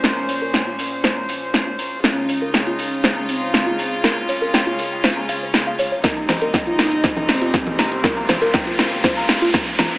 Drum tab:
HH |--o---o---o---o-|--o---o---o---o-|--o---o---o---o-|xxoxxxoxxxoxxxox|
SD |o---o---o---o---|o---o---o---o---|o---o---o---o---|o-o-o-o-o-o-o-o-|
CG |----------------|----------------|----------------|--O------O---O--|
BD |----------------|----------------|----------------|o---o---o---o---|

HH |xxoxxxoxxxoxxxox|
SD |o-o-o-o-o-o-o-o-|
CG |--O-----------O-|
BD |o---o---o---o---|